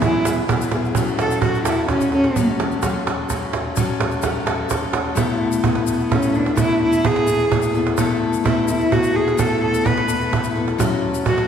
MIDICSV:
0, 0, Header, 1, 5, 480
1, 0, Start_track
1, 0, Key_signature, 3, "major"
1, 0, Tempo, 468019
1, 979, Time_signature, 3, 2, 24, 8
1, 11770, End_track
2, 0, Start_track
2, 0, Title_t, "Cello"
2, 0, Program_c, 0, 42
2, 37, Note_on_c, 0, 64, 88
2, 262, Note_off_c, 0, 64, 0
2, 1232, Note_on_c, 0, 69, 92
2, 1459, Note_off_c, 0, 69, 0
2, 1476, Note_on_c, 0, 66, 75
2, 1697, Note_off_c, 0, 66, 0
2, 1703, Note_on_c, 0, 64, 77
2, 1934, Note_off_c, 0, 64, 0
2, 1947, Note_on_c, 0, 61, 87
2, 2177, Note_off_c, 0, 61, 0
2, 2194, Note_on_c, 0, 61, 93
2, 2420, Note_off_c, 0, 61, 0
2, 5797, Note_on_c, 0, 59, 74
2, 6013, Note_off_c, 0, 59, 0
2, 6032, Note_on_c, 0, 59, 78
2, 6290, Note_on_c, 0, 61, 83
2, 6305, Note_off_c, 0, 59, 0
2, 6523, Note_on_c, 0, 62, 78
2, 6538, Note_off_c, 0, 61, 0
2, 6753, Note_off_c, 0, 62, 0
2, 6762, Note_on_c, 0, 64, 99
2, 6976, Note_off_c, 0, 64, 0
2, 7011, Note_on_c, 0, 64, 95
2, 7235, Note_on_c, 0, 68, 101
2, 7250, Note_off_c, 0, 64, 0
2, 7949, Note_off_c, 0, 68, 0
2, 8666, Note_on_c, 0, 64, 79
2, 8888, Note_off_c, 0, 64, 0
2, 8906, Note_on_c, 0, 64, 90
2, 9143, Note_on_c, 0, 66, 92
2, 9159, Note_off_c, 0, 64, 0
2, 9390, Note_on_c, 0, 68, 85
2, 9405, Note_off_c, 0, 66, 0
2, 9631, Note_on_c, 0, 69, 88
2, 9647, Note_off_c, 0, 68, 0
2, 9864, Note_off_c, 0, 69, 0
2, 9870, Note_on_c, 0, 69, 96
2, 10126, Note_on_c, 0, 71, 94
2, 10142, Note_off_c, 0, 69, 0
2, 10835, Note_off_c, 0, 71, 0
2, 11563, Note_on_c, 0, 66, 82
2, 11770, Note_off_c, 0, 66, 0
2, 11770, End_track
3, 0, Start_track
3, 0, Title_t, "Steel-string acoustic guitar"
3, 0, Program_c, 1, 25
3, 13, Note_on_c, 1, 54, 60
3, 26, Note_on_c, 1, 59, 64
3, 34, Note_on_c, 1, 64, 60
3, 43, Note_on_c, 1, 68, 68
3, 239, Note_off_c, 1, 68, 0
3, 251, Note_on_c, 1, 68, 51
3, 253, Note_off_c, 1, 64, 0
3, 257, Note_off_c, 1, 54, 0
3, 263, Note_off_c, 1, 59, 0
3, 265, Note_on_c, 1, 64, 46
3, 276, Note_on_c, 1, 59, 41
3, 282, Note_on_c, 1, 54, 42
3, 480, Note_off_c, 1, 54, 0
3, 491, Note_off_c, 1, 59, 0
3, 492, Note_on_c, 1, 54, 54
3, 496, Note_off_c, 1, 68, 0
3, 502, Note_off_c, 1, 64, 0
3, 503, Note_on_c, 1, 59, 60
3, 516, Note_on_c, 1, 64, 63
3, 524, Note_on_c, 1, 68, 60
3, 723, Note_off_c, 1, 68, 0
3, 733, Note_off_c, 1, 64, 0
3, 735, Note_on_c, 1, 68, 46
3, 736, Note_off_c, 1, 54, 0
3, 741, Note_off_c, 1, 59, 0
3, 745, Note_on_c, 1, 64, 54
3, 759, Note_on_c, 1, 59, 44
3, 767, Note_on_c, 1, 54, 45
3, 971, Note_off_c, 1, 54, 0
3, 977, Note_off_c, 1, 68, 0
3, 983, Note_off_c, 1, 64, 0
3, 983, Note_on_c, 1, 54, 79
3, 987, Note_off_c, 1, 59, 0
3, 991, Note_on_c, 1, 61, 87
3, 999, Note_on_c, 1, 66, 79
3, 1006, Note_on_c, 1, 69, 83
3, 1447, Note_off_c, 1, 54, 0
3, 1459, Note_on_c, 1, 54, 59
3, 1461, Note_off_c, 1, 61, 0
3, 1470, Note_off_c, 1, 66, 0
3, 1473, Note_off_c, 1, 69, 0
3, 1473, Note_on_c, 1, 61, 64
3, 1484, Note_on_c, 1, 66, 66
3, 1493, Note_on_c, 1, 69, 63
3, 1683, Note_off_c, 1, 69, 0
3, 1695, Note_on_c, 1, 69, 50
3, 1699, Note_off_c, 1, 66, 0
3, 1700, Note_off_c, 1, 54, 0
3, 1706, Note_off_c, 1, 61, 0
3, 1711, Note_on_c, 1, 66, 46
3, 1728, Note_on_c, 1, 61, 37
3, 1938, Note_off_c, 1, 69, 0
3, 1940, Note_off_c, 1, 61, 0
3, 1940, Note_on_c, 1, 54, 53
3, 1946, Note_off_c, 1, 66, 0
3, 1952, Note_on_c, 1, 61, 48
3, 1959, Note_on_c, 1, 66, 62
3, 1971, Note_on_c, 1, 69, 61
3, 2170, Note_off_c, 1, 69, 0
3, 2180, Note_off_c, 1, 54, 0
3, 2182, Note_on_c, 1, 69, 44
3, 2186, Note_off_c, 1, 61, 0
3, 2187, Note_off_c, 1, 66, 0
3, 2200, Note_on_c, 1, 66, 43
3, 2214, Note_on_c, 1, 61, 36
3, 2416, Note_off_c, 1, 61, 0
3, 2420, Note_on_c, 1, 54, 75
3, 2421, Note_off_c, 1, 69, 0
3, 2422, Note_off_c, 1, 66, 0
3, 2428, Note_on_c, 1, 61, 72
3, 2434, Note_on_c, 1, 66, 73
3, 2445, Note_on_c, 1, 69, 81
3, 2885, Note_off_c, 1, 54, 0
3, 2897, Note_off_c, 1, 61, 0
3, 2897, Note_on_c, 1, 54, 68
3, 2908, Note_off_c, 1, 66, 0
3, 2910, Note_on_c, 1, 61, 70
3, 2918, Note_on_c, 1, 66, 68
3, 2925, Note_off_c, 1, 69, 0
3, 2929, Note_on_c, 1, 69, 71
3, 3368, Note_off_c, 1, 54, 0
3, 3381, Note_on_c, 1, 54, 61
3, 3386, Note_off_c, 1, 61, 0
3, 3390, Note_off_c, 1, 66, 0
3, 3396, Note_on_c, 1, 61, 56
3, 3402, Note_on_c, 1, 66, 58
3, 3407, Note_off_c, 1, 69, 0
3, 3411, Note_on_c, 1, 69, 56
3, 3850, Note_off_c, 1, 54, 0
3, 3858, Note_off_c, 1, 61, 0
3, 3862, Note_on_c, 1, 54, 83
3, 3869, Note_off_c, 1, 66, 0
3, 3870, Note_on_c, 1, 61, 92
3, 3882, Note_on_c, 1, 66, 85
3, 3883, Note_off_c, 1, 69, 0
3, 3887, Note_on_c, 1, 69, 91
3, 4318, Note_off_c, 1, 54, 0
3, 4330, Note_on_c, 1, 54, 64
3, 4335, Note_off_c, 1, 61, 0
3, 4344, Note_off_c, 1, 66, 0
3, 4347, Note_on_c, 1, 61, 71
3, 4355, Note_off_c, 1, 69, 0
3, 4357, Note_on_c, 1, 66, 77
3, 4366, Note_on_c, 1, 69, 78
3, 4559, Note_off_c, 1, 69, 0
3, 4571, Note_on_c, 1, 69, 54
3, 4575, Note_off_c, 1, 66, 0
3, 4576, Note_off_c, 1, 54, 0
3, 4584, Note_off_c, 1, 61, 0
3, 4587, Note_on_c, 1, 66, 53
3, 4603, Note_on_c, 1, 61, 43
3, 4816, Note_off_c, 1, 61, 0
3, 4816, Note_on_c, 1, 54, 53
3, 4817, Note_off_c, 1, 69, 0
3, 4825, Note_off_c, 1, 66, 0
3, 4829, Note_on_c, 1, 61, 68
3, 4836, Note_on_c, 1, 66, 72
3, 4847, Note_on_c, 1, 69, 72
3, 5280, Note_off_c, 1, 54, 0
3, 5284, Note_on_c, 1, 57, 92
3, 5290, Note_off_c, 1, 61, 0
3, 5293, Note_off_c, 1, 69, 0
3, 5294, Note_on_c, 1, 59, 86
3, 5301, Note_off_c, 1, 66, 0
3, 5305, Note_on_c, 1, 64, 86
3, 5305, Note_on_c, 1, 69, 95
3, 5768, Note_off_c, 1, 57, 0
3, 5771, Note_off_c, 1, 59, 0
3, 5772, Note_on_c, 1, 57, 60
3, 5784, Note_off_c, 1, 64, 0
3, 5784, Note_on_c, 1, 59, 71
3, 5795, Note_on_c, 1, 64, 66
3, 5801, Note_off_c, 1, 69, 0
3, 5805, Note_on_c, 1, 69, 65
3, 6245, Note_off_c, 1, 57, 0
3, 6250, Note_on_c, 1, 57, 54
3, 6252, Note_off_c, 1, 59, 0
3, 6261, Note_off_c, 1, 64, 0
3, 6264, Note_on_c, 1, 59, 55
3, 6273, Note_on_c, 1, 64, 52
3, 6281, Note_off_c, 1, 69, 0
3, 6285, Note_on_c, 1, 69, 55
3, 6473, Note_off_c, 1, 69, 0
3, 6485, Note_on_c, 1, 69, 47
3, 6489, Note_off_c, 1, 64, 0
3, 6496, Note_off_c, 1, 57, 0
3, 6501, Note_on_c, 1, 64, 40
3, 6504, Note_off_c, 1, 59, 0
3, 6517, Note_on_c, 1, 59, 41
3, 6721, Note_off_c, 1, 59, 0
3, 6724, Note_on_c, 1, 57, 69
3, 6729, Note_off_c, 1, 64, 0
3, 6733, Note_on_c, 1, 59, 75
3, 6734, Note_off_c, 1, 69, 0
3, 6741, Note_on_c, 1, 64, 76
3, 6750, Note_on_c, 1, 69, 68
3, 7203, Note_off_c, 1, 57, 0
3, 7207, Note_off_c, 1, 59, 0
3, 7208, Note_on_c, 1, 57, 60
3, 7219, Note_off_c, 1, 64, 0
3, 7219, Note_on_c, 1, 59, 66
3, 7231, Note_on_c, 1, 64, 59
3, 7235, Note_off_c, 1, 69, 0
3, 7239, Note_on_c, 1, 69, 64
3, 7443, Note_off_c, 1, 69, 0
3, 7455, Note_off_c, 1, 57, 0
3, 7455, Note_on_c, 1, 69, 55
3, 7460, Note_off_c, 1, 64, 0
3, 7461, Note_off_c, 1, 59, 0
3, 7472, Note_on_c, 1, 64, 44
3, 7484, Note_on_c, 1, 59, 40
3, 7689, Note_on_c, 1, 57, 57
3, 7693, Note_off_c, 1, 59, 0
3, 7699, Note_off_c, 1, 69, 0
3, 7700, Note_off_c, 1, 64, 0
3, 7705, Note_on_c, 1, 59, 58
3, 7712, Note_on_c, 1, 64, 54
3, 7724, Note_on_c, 1, 69, 52
3, 7917, Note_off_c, 1, 69, 0
3, 7929, Note_on_c, 1, 69, 53
3, 7936, Note_off_c, 1, 57, 0
3, 7936, Note_off_c, 1, 64, 0
3, 7944, Note_off_c, 1, 59, 0
3, 7948, Note_on_c, 1, 64, 50
3, 7961, Note_on_c, 1, 59, 47
3, 8176, Note_off_c, 1, 69, 0
3, 8177, Note_off_c, 1, 59, 0
3, 8179, Note_on_c, 1, 57, 84
3, 8186, Note_off_c, 1, 64, 0
3, 8189, Note_on_c, 1, 59, 81
3, 8197, Note_on_c, 1, 64, 87
3, 8205, Note_on_c, 1, 69, 91
3, 8650, Note_off_c, 1, 57, 0
3, 8653, Note_off_c, 1, 59, 0
3, 8654, Note_on_c, 1, 57, 61
3, 8664, Note_off_c, 1, 64, 0
3, 8665, Note_on_c, 1, 59, 65
3, 8677, Note_on_c, 1, 64, 62
3, 8682, Note_off_c, 1, 69, 0
3, 8687, Note_on_c, 1, 69, 73
3, 8876, Note_off_c, 1, 69, 0
3, 8889, Note_on_c, 1, 69, 51
3, 8891, Note_off_c, 1, 64, 0
3, 8899, Note_off_c, 1, 57, 0
3, 8903, Note_on_c, 1, 64, 49
3, 8904, Note_off_c, 1, 59, 0
3, 8919, Note_on_c, 1, 59, 41
3, 9136, Note_off_c, 1, 69, 0
3, 9139, Note_off_c, 1, 59, 0
3, 9139, Note_on_c, 1, 57, 55
3, 9143, Note_off_c, 1, 64, 0
3, 9151, Note_on_c, 1, 59, 54
3, 9158, Note_on_c, 1, 64, 59
3, 9170, Note_on_c, 1, 69, 63
3, 9357, Note_off_c, 1, 69, 0
3, 9369, Note_on_c, 1, 69, 53
3, 9373, Note_off_c, 1, 64, 0
3, 9381, Note_off_c, 1, 57, 0
3, 9386, Note_on_c, 1, 64, 41
3, 9387, Note_off_c, 1, 59, 0
3, 9403, Note_on_c, 1, 59, 45
3, 9613, Note_off_c, 1, 59, 0
3, 9613, Note_on_c, 1, 57, 74
3, 9616, Note_off_c, 1, 69, 0
3, 9618, Note_off_c, 1, 64, 0
3, 9625, Note_on_c, 1, 59, 80
3, 9630, Note_on_c, 1, 64, 80
3, 9638, Note_on_c, 1, 69, 75
3, 10091, Note_off_c, 1, 57, 0
3, 10095, Note_on_c, 1, 57, 61
3, 10097, Note_off_c, 1, 59, 0
3, 10107, Note_off_c, 1, 64, 0
3, 10109, Note_on_c, 1, 59, 62
3, 10119, Note_on_c, 1, 64, 60
3, 10125, Note_off_c, 1, 69, 0
3, 10129, Note_on_c, 1, 69, 62
3, 10326, Note_off_c, 1, 69, 0
3, 10338, Note_on_c, 1, 69, 55
3, 10339, Note_off_c, 1, 57, 0
3, 10344, Note_off_c, 1, 64, 0
3, 10346, Note_off_c, 1, 59, 0
3, 10357, Note_on_c, 1, 64, 46
3, 10373, Note_on_c, 1, 59, 42
3, 10573, Note_on_c, 1, 57, 48
3, 10574, Note_off_c, 1, 59, 0
3, 10580, Note_off_c, 1, 69, 0
3, 10586, Note_on_c, 1, 59, 59
3, 10588, Note_off_c, 1, 64, 0
3, 10600, Note_on_c, 1, 64, 53
3, 10610, Note_on_c, 1, 69, 55
3, 10812, Note_off_c, 1, 69, 0
3, 10818, Note_off_c, 1, 57, 0
3, 10824, Note_on_c, 1, 69, 54
3, 10825, Note_off_c, 1, 59, 0
3, 10832, Note_off_c, 1, 64, 0
3, 10845, Note_on_c, 1, 64, 51
3, 10856, Note_on_c, 1, 59, 45
3, 11059, Note_on_c, 1, 54, 86
3, 11064, Note_off_c, 1, 69, 0
3, 11065, Note_off_c, 1, 59, 0
3, 11069, Note_on_c, 1, 61, 91
3, 11074, Note_off_c, 1, 64, 0
3, 11078, Note_on_c, 1, 66, 74
3, 11086, Note_on_c, 1, 69, 94
3, 11536, Note_off_c, 1, 54, 0
3, 11540, Note_on_c, 1, 54, 63
3, 11546, Note_off_c, 1, 61, 0
3, 11550, Note_on_c, 1, 61, 60
3, 11555, Note_off_c, 1, 69, 0
3, 11558, Note_off_c, 1, 66, 0
3, 11562, Note_on_c, 1, 66, 57
3, 11575, Note_on_c, 1, 69, 67
3, 11764, Note_off_c, 1, 69, 0
3, 11770, Note_off_c, 1, 54, 0
3, 11770, Note_off_c, 1, 61, 0
3, 11770, Note_off_c, 1, 66, 0
3, 11770, End_track
4, 0, Start_track
4, 0, Title_t, "Cajon"
4, 18, Note_on_c, 9, 36, 95
4, 120, Note_off_c, 9, 36, 0
4, 258, Note_on_c, 9, 38, 89
4, 361, Note_off_c, 9, 38, 0
4, 383, Note_on_c, 9, 38, 30
4, 486, Note_off_c, 9, 38, 0
4, 503, Note_on_c, 9, 36, 103
4, 606, Note_off_c, 9, 36, 0
4, 733, Note_on_c, 9, 38, 86
4, 835, Note_off_c, 9, 38, 0
4, 972, Note_on_c, 9, 36, 95
4, 1075, Note_off_c, 9, 36, 0
4, 1217, Note_on_c, 9, 38, 91
4, 1320, Note_off_c, 9, 38, 0
4, 1454, Note_on_c, 9, 36, 104
4, 1556, Note_off_c, 9, 36, 0
4, 1695, Note_on_c, 9, 38, 102
4, 1798, Note_off_c, 9, 38, 0
4, 1822, Note_on_c, 9, 38, 30
4, 1924, Note_off_c, 9, 38, 0
4, 1933, Note_on_c, 9, 36, 97
4, 1933, Note_on_c, 9, 38, 30
4, 2036, Note_off_c, 9, 36, 0
4, 2036, Note_off_c, 9, 38, 0
4, 2058, Note_on_c, 9, 36, 51
4, 2161, Note_off_c, 9, 36, 0
4, 2174, Note_on_c, 9, 38, 55
4, 2276, Note_off_c, 9, 38, 0
4, 2297, Note_on_c, 9, 38, 63
4, 2400, Note_off_c, 9, 38, 0
4, 2421, Note_on_c, 9, 36, 78
4, 2524, Note_off_c, 9, 36, 0
4, 2665, Note_on_c, 9, 38, 86
4, 2767, Note_off_c, 9, 38, 0
4, 2899, Note_on_c, 9, 36, 90
4, 2899, Note_on_c, 9, 38, 28
4, 3002, Note_off_c, 9, 36, 0
4, 3002, Note_off_c, 9, 38, 0
4, 3148, Note_on_c, 9, 38, 86
4, 3251, Note_off_c, 9, 38, 0
4, 3384, Note_on_c, 9, 36, 84
4, 3384, Note_on_c, 9, 38, 28
4, 3487, Note_off_c, 9, 36, 0
4, 3487, Note_off_c, 9, 38, 0
4, 3508, Note_on_c, 9, 38, 26
4, 3611, Note_off_c, 9, 38, 0
4, 3624, Note_on_c, 9, 38, 89
4, 3726, Note_off_c, 9, 38, 0
4, 3869, Note_on_c, 9, 36, 87
4, 3971, Note_off_c, 9, 36, 0
4, 4107, Note_on_c, 9, 38, 104
4, 4210, Note_off_c, 9, 38, 0
4, 4343, Note_on_c, 9, 36, 98
4, 4343, Note_on_c, 9, 38, 30
4, 4446, Note_off_c, 9, 36, 0
4, 4446, Note_off_c, 9, 38, 0
4, 4583, Note_on_c, 9, 38, 96
4, 4685, Note_off_c, 9, 38, 0
4, 4828, Note_on_c, 9, 36, 92
4, 4828, Note_on_c, 9, 38, 27
4, 4931, Note_off_c, 9, 36, 0
4, 4931, Note_off_c, 9, 38, 0
4, 4948, Note_on_c, 9, 38, 29
4, 5050, Note_off_c, 9, 38, 0
4, 5060, Note_on_c, 9, 38, 93
4, 5162, Note_off_c, 9, 38, 0
4, 5305, Note_on_c, 9, 36, 88
4, 5407, Note_off_c, 9, 36, 0
4, 5428, Note_on_c, 9, 38, 29
4, 5531, Note_off_c, 9, 38, 0
4, 5782, Note_on_c, 9, 36, 100
4, 5884, Note_off_c, 9, 36, 0
4, 5900, Note_on_c, 9, 38, 73
4, 6003, Note_off_c, 9, 38, 0
4, 6273, Note_on_c, 9, 36, 103
4, 6375, Note_off_c, 9, 36, 0
4, 6627, Note_on_c, 9, 38, 65
4, 6730, Note_off_c, 9, 38, 0
4, 6742, Note_on_c, 9, 36, 98
4, 6845, Note_off_c, 9, 36, 0
4, 6874, Note_on_c, 9, 38, 32
4, 6976, Note_off_c, 9, 38, 0
4, 7226, Note_on_c, 9, 36, 106
4, 7329, Note_off_c, 9, 36, 0
4, 7343, Note_on_c, 9, 38, 72
4, 7446, Note_off_c, 9, 38, 0
4, 7709, Note_on_c, 9, 36, 102
4, 7812, Note_off_c, 9, 36, 0
4, 8067, Note_on_c, 9, 38, 72
4, 8170, Note_off_c, 9, 38, 0
4, 8182, Note_on_c, 9, 36, 93
4, 8285, Note_off_c, 9, 36, 0
4, 8311, Note_on_c, 9, 38, 31
4, 8413, Note_off_c, 9, 38, 0
4, 8672, Note_on_c, 9, 36, 100
4, 8774, Note_off_c, 9, 36, 0
4, 9149, Note_on_c, 9, 36, 86
4, 9252, Note_off_c, 9, 36, 0
4, 9514, Note_on_c, 9, 38, 67
4, 9616, Note_off_c, 9, 38, 0
4, 9632, Note_on_c, 9, 36, 92
4, 9735, Note_off_c, 9, 36, 0
4, 10110, Note_on_c, 9, 36, 94
4, 10213, Note_off_c, 9, 36, 0
4, 10229, Note_on_c, 9, 38, 71
4, 10332, Note_off_c, 9, 38, 0
4, 10477, Note_on_c, 9, 38, 30
4, 10579, Note_off_c, 9, 38, 0
4, 10595, Note_on_c, 9, 36, 91
4, 10698, Note_off_c, 9, 36, 0
4, 10950, Note_on_c, 9, 38, 67
4, 11053, Note_off_c, 9, 38, 0
4, 11075, Note_on_c, 9, 36, 92
4, 11177, Note_off_c, 9, 36, 0
4, 11192, Note_on_c, 9, 38, 28
4, 11294, Note_off_c, 9, 38, 0
4, 11548, Note_on_c, 9, 36, 94
4, 11650, Note_off_c, 9, 36, 0
4, 11669, Note_on_c, 9, 38, 67
4, 11770, Note_off_c, 9, 38, 0
4, 11770, End_track
5, 0, Start_track
5, 0, Title_t, "Drums"
5, 267, Note_on_c, 9, 82, 94
5, 369, Note_off_c, 9, 82, 0
5, 509, Note_on_c, 9, 82, 27
5, 612, Note_off_c, 9, 82, 0
5, 628, Note_on_c, 9, 82, 69
5, 731, Note_off_c, 9, 82, 0
5, 869, Note_on_c, 9, 82, 25
5, 972, Note_off_c, 9, 82, 0
5, 984, Note_on_c, 9, 82, 85
5, 1086, Note_off_c, 9, 82, 0
5, 1105, Note_on_c, 9, 82, 26
5, 1208, Note_off_c, 9, 82, 0
5, 1227, Note_on_c, 9, 82, 26
5, 1330, Note_off_c, 9, 82, 0
5, 1343, Note_on_c, 9, 82, 72
5, 1445, Note_off_c, 9, 82, 0
5, 1584, Note_on_c, 9, 82, 24
5, 1687, Note_off_c, 9, 82, 0
5, 1698, Note_on_c, 9, 82, 84
5, 1800, Note_off_c, 9, 82, 0
5, 2060, Note_on_c, 9, 82, 62
5, 2163, Note_off_c, 9, 82, 0
5, 2423, Note_on_c, 9, 82, 80
5, 2525, Note_off_c, 9, 82, 0
5, 2784, Note_on_c, 9, 82, 27
5, 2887, Note_off_c, 9, 82, 0
5, 2895, Note_on_c, 9, 82, 78
5, 2997, Note_off_c, 9, 82, 0
5, 3379, Note_on_c, 9, 82, 89
5, 3481, Note_off_c, 9, 82, 0
5, 3857, Note_on_c, 9, 82, 93
5, 3959, Note_off_c, 9, 82, 0
5, 4219, Note_on_c, 9, 82, 33
5, 4321, Note_off_c, 9, 82, 0
5, 4329, Note_on_c, 9, 82, 88
5, 4431, Note_off_c, 9, 82, 0
5, 4815, Note_on_c, 9, 82, 95
5, 4918, Note_off_c, 9, 82, 0
5, 5294, Note_on_c, 9, 82, 97
5, 5396, Note_off_c, 9, 82, 0
5, 5661, Note_on_c, 9, 82, 80
5, 5763, Note_off_c, 9, 82, 0
5, 6019, Note_on_c, 9, 82, 96
5, 6122, Note_off_c, 9, 82, 0
5, 6152, Note_on_c, 9, 82, 29
5, 6254, Note_off_c, 9, 82, 0
5, 6382, Note_on_c, 9, 82, 64
5, 6485, Note_off_c, 9, 82, 0
5, 6505, Note_on_c, 9, 82, 26
5, 6607, Note_off_c, 9, 82, 0
5, 6741, Note_on_c, 9, 82, 84
5, 6844, Note_off_c, 9, 82, 0
5, 7103, Note_on_c, 9, 82, 71
5, 7206, Note_off_c, 9, 82, 0
5, 7459, Note_on_c, 9, 82, 86
5, 7561, Note_off_c, 9, 82, 0
5, 7581, Note_on_c, 9, 82, 29
5, 7683, Note_off_c, 9, 82, 0
5, 7817, Note_on_c, 9, 82, 75
5, 7919, Note_off_c, 9, 82, 0
5, 7939, Note_on_c, 9, 82, 28
5, 8041, Note_off_c, 9, 82, 0
5, 8178, Note_on_c, 9, 82, 103
5, 8281, Note_off_c, 9, 82, 0
5, 8543, Note_on_c, 9, 82, 77
5, 8646, Note_off_c, 9, 82, 0
5, 8900, Note_on_c, 9, 82, 91
5, 9003, Note_off_c, 9, 82, 0
5, 9029, Note_on_c, 9, 82, 31
5, 9131, Note_off_c, 9, 82, 0
5, 9261, Note_on_c, 9, 82, 66
5, 9364, Note_off_c, 9, 82, 0
5, 9621, Note_on_c, 9, 82, 93
5, 9724, Note_off_c, 9, 82, 0
5, 9989, Note_on_c, 9, 82, 75
5, 10092, Note_off_c, 9, 82, 0
5, 10345, Note_on_c, 9, 82, 95
5, 10447, Note_off_c, 9, 82, 0
5, 10474, Note_on_c, 9, 82, 28
5, 10576, Note_off_c, 9, 82, 0
5, 10706, Note_on_c, 9, 82, 65
5, 10809, Note_off_c, 9, 82, 0
5, 11074, Note_on_c, 9, 82, 89
5, 11177, Note_off_c, 9, 82, 0
5, 11428, Note_on_c, 9, 82, 76
5, 11531, Note_off_c, 9, 82, 0
5, 11770, End_track
0, 0, End_of_file